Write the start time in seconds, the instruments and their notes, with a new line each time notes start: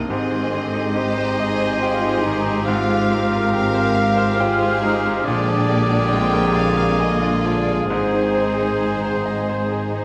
Already playing: grand piano G2 A#3 D#4 G4 A#4 D#5, viola section A#3
0.08 double bass section G#1, grand piano G#2, cello section G#2, french horn section G#3 C4, viola section C4, clarinet G4, violin section G#4 D#5, oboe C5
0.31 grand piano D#3
0.52 viola section D3, grand piano C4
0.74 grand piano D#4
0.95 viola section D#4, grand piano G4, violin section G4
1.18 grand piano C5
1.38 violin section G#4, grand piano D#5
1.61 grand piano C5
1.80 viola section F4, violin section G#4, grand piano G5
2.03 grand piano D#4
2.23 grand piano D#3, viola section D#4
2.47 grand piano C4
2.65 grand piano G#2, viola section C4, french horn section F4, violin section F4 F5, oboe F5
2.90 grand piano G#3
3.11 grand piano C4, violin section A#4
3.32 grand piano F4
3.53 viola section C4, grand piano G4, violin section F5
3.74 grand piano C5
3.95 grand piano F5
4.17 grand piano C5
4.39 viola section F4, violin section G#4 C5, grand piano G5
4.62 grand piano F4
4.82 grand piano G#3, viola section D#4
5.06 grand piano C4
5.24 double bass section A#1, cello section A#2, grand piano A#2, french horn section D3 G#3, viola section D4, violin section G4 D5, clarinet G#4, oboe D5
5.48 grand piano F3
5.71 grand piano A#3
5.91 grand piano D4
6.10 grand piano G#3, viola section C4, violin section G5
6.33 grand piano A#4
6.53 grand piano D5, violin section F5
6.77 grand piano A#4
6.98 viola section A#3, violin section F4 D#5, grand piano G#4
7.22 grand piano D4
7.44 grand piano F3, violin section D5
7.68 grand piano A#3
7.88 double bass section G#1, cello section G#2, grand piano G#2, french horn section C4, viola section D#4, violin section G#4 C5, oboe C5
8.13 grand piano D#3
8.35 grand piano C4
8.58 grand piano D#4
8.80 grand piano G#4
9.04 grand piano C5
9.25 grand piano D#5
9.49 grand piano C5
9.72 grand piano G#4
9.95 grand piano D#4